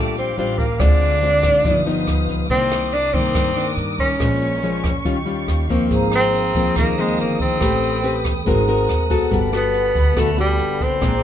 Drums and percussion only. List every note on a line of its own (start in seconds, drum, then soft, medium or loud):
0.16 closed hi-hat soft
0.16 shaker soft
0.38 closed hi-hat soft
0.38 shaker medium
0.58 kick medium
0.58 closed hi-hat soft
0.58 shaker soft
0.80 kick medium
0.80 cross-stick medium
0.80 closed hi-hat medium
0.80 shaker medium
1.01 closed hi-hat soft
1.01 shaker soft
1.22 closed hi-hat soft
1.22 shaker medium
1.43 kick medium
1.43 cross-stick medium
1.43 closed hi-hat soft
1.43 shaker soft
1.65 kick medium
1.65 closed hi-hat medium
1.65 shaker medium
1.86 closed hi-hat soft
1.86 shaker soft
2.07 cross-stick medium
2.07 closed hi-hat soft
2.07 shaker medium
2.28 kick medium
2.28 closed hi-hat soft
2.28 shaker soft
2.50 kick medium
2.50 closed hi-hat medium
2.50 shaker medium
2.71 cross-stick medium
2.71 closed hi-hat soft
2.71 shaker soft
2.93 closed hi-hat soft
2.93 shaker medium
3.14 kick medium
3.14 closed hi-hat soft
3.14 shaker soft
3.34 kick medium
3.34 cross-stick medium
3.34 closed hi-hat medium
3.34 shaker medium
3.56 closed hi-hat soft
3.56 shaker soft
3.78 closed hi-hat soft
3.78 shaker medium
3.99 kick medium
3.99 closed hi-hat soft
3.99 shaker soft
4.20 kick medium
4.20 cross-stick medium
4.20 closed hi-hat medium
4.20 shaker medium
4.41 closed hi-hat soft
4.41 shaker soft
4.63 closed hi-hat soft
4.63 shaker medium
4.84 kick medium
4.84 cross-stick medium
4.84 closed hi-hat medium
4.84 shaker soft
5.05 kick medium
5.05 closed hi-hat medium
5.05 shaker medium
5.27 closed hi-hat soft
5.27 shaker soft
5.48 cross-stick medium
5.48 closed hi-hat soft
5.48 shaker medium
5.69 kick medium
5.69 closed hi-hat soft
5.69 shaker soft
5.91 kick medium
5.91 closed hi-hat medium
5.91 shaker medium
6.12 cross-stick medium
6.12 closed hi-hat soft
6.12 shaker soft
6.33 closed hi-hat soft
6.33 shaker medium
6.55 kick medium
6.55 closed hi-hat soft
6.55 shaker soft
6.76 kick medium
6.76 cross-stick medium
6.76 closed hi-hat medium
6.76 shaker medium
6.97 closed hi-hat soft
6.97 shaker soft
7.18 closed hi-hat soft
7.18 shaker medium
7.40 kick medium
7.40 closed hi-hat soft
7.40 shaker soft
7.61 kick medium
7.61 cross-stick medium
7.61 closed hi-hat medium
7.61 shaker medium
7.83 closed hi-hat soft
7.83 shaker soft
8.04 closed hi-hat soft
8.04 shaker medium
8.25 kick medium
8.25 cross-stick medium
8.25 closed hi-hat soft
8.25 shaker soft
8.46 kick medium
8.46 closed hi-hat medium
8.46 shaker medium
8.68 closed hi-hat soft
8.68 shaker soft
8.89 cross-stick medium
8.89 closed hi-hat soft
8.89 shaker medium
9.09 kick medium
9.09 closed hi-hat soft
9.09 shaker soft
9.31 kick medium
9.31 closed hi-hat medium
9.31 shaker medium
9.53 cross-stick medium
9.53 closed hi-hat soft
9.53 shaker soft
9.74 closed hi-hat soft
9.74 shaker medium
9.95 kick medium
9.95 closed hi-hat soft
9.95 shaker soft
10.17 kick medium
10.17 cross-stick medium
10.17 closed hi-hat medium
10.17 shaker medium
10.38 closed hi-hat soft
10.38 shaker soft
10.59 closed hi-hat soft
10.59 shaker medium
10.80 kick medium
10.80 closed hi-hat soft
10.80 shaker soft
11.02 kick medium
11.02 cross-stick medium
11.02 closed hi-hat medium
11.02 shaker medium